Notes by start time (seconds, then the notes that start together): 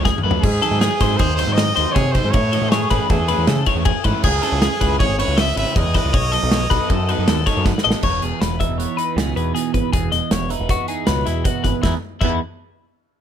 Already playing: C#2 C#3 F#3 A3 C#4
0.05 G#4, kick, snare
0.18 mid tom
0.23 F#2 C#3 F#3 A3 C#4 B4
0.31 floor tom
0.41 G#2 G#4, kick, crash
0.62 D#3 F#3 C4 D#4 A4, ride
0.71 G#2
0.81 G#4, snare, ride
1.00 G#2 D#3 F#3 C4 D#4 C5, kick, snare, ride
1.17 D#2 G#4 C5, kick, ride
1.36 D#3 F#3 C4 D#4 C5, ride
1.47 G#2
1.53 D#5
1.58 D#5, snare, ride
1.76 D#2 D#3 F#3 C4 D#4 C5, snare, ride
1.92 G#4 C#5, kick, snare, ride
1.96 C3
2.12 D#4 C5, kick, ride
2.16 D#3 F#3 C4
2.24 G#2
2.31 A2 C#5, kick, ride
2.52 E3 A3 C#4 E4 D#5, ride
2.62 A2
2.69 G#4 C#5, snare, ride
2.90 A2 E3 A3 C#4 E4 B4, kick, snare, ride
3.09 E2 G#4 A4, kick, snare, ride
3.28 E3 A3 C#4 E4 B4, ride
3.38 E2
3.47 C#3 A4, snare, ride
3.66 E3 A3 C#4 E4 C#5, kick, ride
3.75 E2
3.85 G#4, kick, ride
4.04 G#2 E3 A3 C#4 E4 B4, kick, ride
4.23 C#2 G#4, kick, crash
4.42 C#3 G#3 C#4 E4 A4, snare, ride
4.52 C#2
4.62 G#4, snare, ride
4.81 C#2 C#3 G#3 C#4 E4 B4, kick, ride
4.99 G#1 G#4 C#5, kick, ride
5.18 C#3 G#3 C#4 E4 B4 C#5, ride
5.28 C#2
5.37 D#5 E5, snare, ride
5.56 G#1 C#3 G#3 C#4 E4 B4 E5, ride
5.75 E2 G#4 D#5, kick, snare, ride
5.94 C#3 G#3 C#4 E4 B4 D#5, kick, snare, ride
6.05 C#2
6.13 B1 C#5, kick, ride
6.32 F#3 B3 D#4 A4 D#5, ride
6.43 B1
6.51 C#5, snare, ride
6.70 B1 F#3 B3 D#4 A4 B4, kick, snare, ride
6.89 F#2 A4, kick, ride
7.09 F#3 B3 D#4 A4 B4, ride
7.19 F#2
7.27 D#2 A4, snare, ride
7.46 F#3 B3 D#4 A4 C#5, kick, snare, ride
7.57 F#2
7.65 B4, kick, snare
7.78 snare
7.84 A1 F#3 B3 D#4 A4 D#5
7.91 snare
8.03 E1 E2 C#5, kick, crash
8.22 E1 G#4, closed hi-hat
8.40 E1 B4, snare, closed hi-hat
8.60 E3 D#4 E5, kick, closed hi-hat
8.69 E1
8.78 B3 C#5, closed hi-hat
8.97 D#4 B4, closed hi-hat
9.16 C#2 B2 G#4, snare, closed hi-hat
9.36 E2 G#4 B4, closed hi-hat
9.55 E2 G#4, closed hi-hat
9.74 G#1 B4, kick, closed hi-hat
9.93 E1 E2 G#4, kick, closed hi-hat
10.12 E1 D#5, snare, closed hi-hat
10.31 E1 C#5, snare, closed hi-hat
10.50 E3 D#4 B4, closed hi-hat
10.60 E1
10.69 B3 F#4, kick, closed hi-hat
10.88 D#4 G#4, closed hi-hat
11.07 C#2 B2 B4, snare, closed hi-hat
11.26 E2 E4 G#4, snare, closed hi-hat
11.44 E2 F#4, kick, closed hi-hat
11.64 G#1 B4, kick, snare, closed hi-hat
11.83 E2 E3 B3 E4, kick, snare
11.87 D#4 G#4
12.21 E2 E3 E4, kick, crash
12.25 B3 D#4 G#4